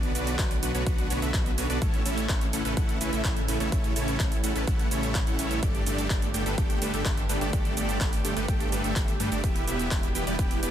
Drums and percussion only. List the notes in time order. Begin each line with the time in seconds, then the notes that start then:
0.03 closed hi-hat, shaker
0.15 open hi-hat, shaker
0.27 closed hi-hat, shaker
0.39 kick, clap, closed hi-hat, shaker
0.51 open hi-hat, shaker
0.63 open hi-hat, shaker
0.75 closed hi-hat, shaker
0.87 kick, closed hi-hat, shaker
0.98 closed hi-hat, shaker
1.10 open hi-hat, shaker
1.22 closed hi-hat, shaker
1.34 kick, clap, closed hi-hat, shaker
1.46 closed hi-hat, shaker
1.58 open hi-hat, shaker
1.70 closed hi-hat, shaker
1.82 kick, closed hi-hat, shaker
1.94 closed hi-hat, shaker
2.06 open hi-hat, shaker
2.18 closed hi-hat, shaker
2.29 kick, clap, closed hi-hat, shaker
2.41 closed hi-hat, shaker
2.53 open hi-hat, shaker
2.65 closed hi-hat, shaker
2.77 kick, closed hi-hat, shaker
2.89 closed hi-hat, shaker
3.01 open hi-hat, shaker
3.13 closed hi-hat, shaker
3.24 kick, clap, closed hi-hat, shaker
3.37 closed hi-hat, shaker
3.48 open hi-hat, shaker
3.60 closed hi-hat, shaker
3.72 kick, closed hi-hat, shaker
3.84 closed hi-hat, shaker
3.96 open hi-hat, shaker
4.08 closed hi-hat, shaker
4.20 kick, clap, closed hi-hat, shaker
4.32 open hi-hat, shaker
4.44 open hi-hat, shaker
4.56 closed hi-hat, shaker
4.67 kick, closed hi-hat, shaker
4.79 closed hi-hat, shaker
4.91 open hi-hat, shaker
5.03 closed hi-hat, shaker
5.15 kick, clap, closed hi-hat, shaker
5.27 closed hi-hat, shaker
5.39 open hi-hat, shaker
5.51 closed hi-hat, shaker
5.63 kick, closed hi-hat, shaker
5.75 closed hi-hat, shaker
5.87 open hi-hat, shaker
5.98 closed hi-hat, shaker
6.10 kick, clap, closed hi-hat, shaker
6.22 closed hi-hat, shaker
6.34 open hi-hat, shaker
6.46 closed hi-hat, shaker
6.58 kick, closed hi-hat, shaker
6.70 closed hi-hat, shaker
6.82 open hi-hat, shaker
6.94 closed hi-hat, shaker
7.05 kick, clap, closed hi-hat, shaker
7.17 closed hi-hat, shaker
7.29 open hi-hat, shaker
7.41 closed hi-hat, shaker
7.53 kick, closed hi-hat, shaker
7.65 closed hi-hat, shaker
7.77 open hi-hat, shaker
7.89 closed hi-hat, shaker
8.01 kick, clap, closed hi-hat, shaker
8.13 open hi-hat, shaker
8.25 open hi-hat, shaker
8.37 closed hi-hat, shaker
8.48 kick, closed hi-hat, shaker
8.60 closed hi-hat, shaker
8.72 open hi-hat, shaker
8.84 closed hi-hat, shaker
8.96 kick, clap, closed hi-hat, shaker
9.08 closed hi-hat, shaker
9.20 open hi-hat, shaker
9.32 closed hi-hat, shaker
9.44 kick, closed hi-hat, shaker
9.56 closed hi-hat, shaker
9.68 open hi-hat, shaker
9.79 closed hi-hat, shaker
9.91 kick, clap, closed hi-hat, shaker
10.03 closed hi-hat, shaker
10.15 open hi-hat, shaker
10.27 closed hi-hat, shaker
10.39 kick, closed hi-hat, shaker
10.51 closed hi-hat, shaker
10.63 open hi-hat, shaker